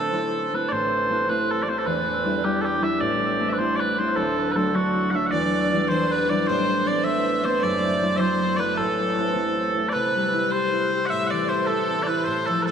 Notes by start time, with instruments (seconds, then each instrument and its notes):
Already playing: harp A2 A3 C4 D4 E4, fiddle A4, bagpipes A4
0.13 harp A3 C4 E4
0.53 harp A3 C4 E4, bagpipes B4
0.69 harp A1 A2, bagpipes C5 D5
1.10 harp A3 C4 E4
1.28 harp A3 C4 E4, bagpipes B4
1.51 bagpipes A4
1.62 bagpipes D5
1.67 harp A3 C4 E4, bagpipes C5
1.78 bagpipes A4
1.86 harp E1 E2, bagpipes B4
2.25 harp G3 D4 E4
2.43 harp G3 D4 E4, bagpipes G4
2.62 bagpipes G4 A4
2.82 harp G3 D4 E4, bagpipes E5
3.00 harp A1 A2, bagpipes D5
3.40 harp A3 C4 E4
3.49 bagpipes B4 E5
3.58 harp A3 C4 E4, bagpipes C5
3.76 bagpipes B4 D5
3.98 harp A3 C4 E4, bagpipes C5
4.16 harp D1 D2, bagpipes A4
4.51 harp F#3, bagpipes B4
4.56 harp A3 D4, bagpipes A4
4.74 harp F#3 A3 D4, bagpipes F#4
5.11 harp F#3 A3 D4, bagpipes F#5
5.15 bagpipes E5
5.26 bagpipes F#5
5.31 harp E1 E2, bagpipes D5, fiddle D5
5.72 harp E3 G3 D4
5.89 harp E3 G3 D4, bagpipes C5, fiddle C5
6.11 bagpipes B4, fiddle B4
6.29 harp E3 G3 D4, bagpipes D5, fiddle D5
6.47 harp A1 A2, bagpipes C5, fiddle C5
6.87 harp A3 B3 C4, fiddle D5, bagpipes D5
7.04 harp A3 B3 C4, fiddle E5, bagpipes E5
7.44 harp A3 B3 C4, fiddle C5, bagpipes C5
7.61 harp F#1 F#2, fiddle D5, bagpipes D5
8.01 harp F#3 A3 E4
8.16 harp F#3 A3 E4, fiddle C5, bagpipes C5 E5
8.57 harp F#3 A3 E4, fiddle B4, bagpipes B4 D5
8.77 harp A1 A2, fiddle A4, bagpipes A4
9.18 harp A3 C4 E4
9.35 harp A3 C4 E4
9.75 harp A3 C4 E4
9.89 fiddle B4, bagpipes B4 D5
9.94 harp C3
10.16 harp G3
10.34 harp E4
10.50 harp G4, fiddle C5, bagpipes C5
10.73 harp E4
10.93 harp G4
11.06 fiddle E5, bagpipes F#5
11.10 harp A2, bagpipes E5
11.27 bagpipes D5 F#5, fiddle D5
11.32 harp E3
11.49 harp C4, bagpipes C5, fiddle C5
11.66 harp E4, bagpipes A4, fiddle A4
11.90 harp C4
12.03 bagpipes D5
12.07 harp E4, bagpipes B4, fiddle B4
12.24 harp A2, bagpipes C5, fiddle C5
12.46 harp F3, bagpipes A4, fiddle A4
12.62 bagpipes A4 B4
12.66 harp A3, fiddle A4